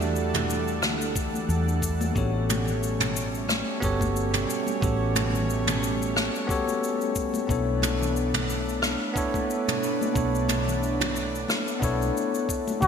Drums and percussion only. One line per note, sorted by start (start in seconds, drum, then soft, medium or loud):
0.00 low conga medium
0.00 cabasa soft
0.16 cabasa medium
0.34 mid tom medium
0.34 high conga medium
0.34 low conga medium
0.34 cabasa soft
0.50 cabasa medium
0.68 cabasa soft
0.82 cross-stick medium
0.82 high conga medium
0.82 cabasa medium
1.01 cabasa soft
1.16 kick medium
1.16 cabasa medium
1.34 high conga medium
1.34 cabasa soft
1.50 cabasa medium
1.69 cabasa soft
1.82 kick medium
1.82 cabasa medium
2.01 high conga medium
2.01 cabasa soft
2.16 kick loud
2.16 cabasa soft
2.49 mid tom soft
2.49 high conga medium
2.49 cabasa medium
2.67 low conga medium
2.67 cabasa soft
2.83 cabasa medium
3.00 mid tom medium
3.00 high conga medium
3.00 low conga medium
3.00 cabasa soft
3.16 cabasa medium
3.35 cabasa soft
3.48 cross-stick medium
3.48 high conga medium
3.48 cabasa medium
3.82 kick medium
3.82 cabasa medium
4.00 kick medium
4.00 high conga medium
4.00 cabasa soft
4.16 cabasa medium
4.34 mid tom medium
4.34 cabasa medium
4.50 cabasa medium
4.67 high conga medium
4.67 cabasa soft
4.82 kick loud
4.82 cabasa soft
5.15 mid tom medium
5.15 high conga medium
5.15 cabasa medium
5.34 low conga medium
5.34 cabasa soft
5.50 cabasa medium
5.67 mid tom medium
5.67 high conga medium
5.67 low conga medium
5.67 cabasa soft
5.83 cabasa medium
6.02 cabasa soft
6.16 cross-stick medium
6.16 high conga medium
6.16 cabasa soft
6.35 cabasa soft
6.49 kick medium
6.49 cabasa medium
6.67 high conga medium
6.67 cabasa soft
6.84 cabasa medium
7.01 cabasa soft
7.15 kick soft
7.15 cabasa medium
7.34 high conga medium
7.34 cabasa soft
7.49 kick loud
7.49 cabasa soft
7.82 mid tom medium
7.82 high conga medium
7.82 cabasa medium
8.02 low conga medium
8.02 cabasa soft
8.16 cabasa medium
8.34 mid tom medium
8.34 high conga medium
8.34 low conga medium
8.34 cabasa soft
8.50 cabasa medium
8.69 cabasa soft
8.82 cross-stick medium
8.82 high conga medium
8.82 cabasa medium
9.16 kick medium
9.16 cabasa medium
9.34 kick medium
9.34 high conga medium
9.34 cabasa soft
9.50 cabasa soft
9.68 mid tom medium
9.68 cabasa medium
9.83 cabasa medium
10.01 high conga medium
10.01 cabasa soft
10.16 kick loud
10.16 cabasa medium
10.35 cabasa soft
10.49 mid tom medium
10.49 high conga medium
10.49 cabasa medium
10.68 low conga medium
10.68 cabasa soft
10.83 cabasa medium
11.00 mid tom medium
11.00 high conga medium
11.00 low conga medium
11.00 cabasa soft
11.16 cabasa medium
11.35 cabasa soft
11.49 cross-stick medium
11.49 high conga medium
11.49 cabasa medium
11.68 cabasa soft
11.82 kick medium
11.82 cabasa medium
12.01 high conga medium
12.01 cabasa medium
12.17 cabasa medium
12.35 cabasa soft
12.49 kick medium
12.49 cabasa medium
12.68 high conga medium
12.68 cabasa soft
12.82 kick loud
12.82 cabasa medium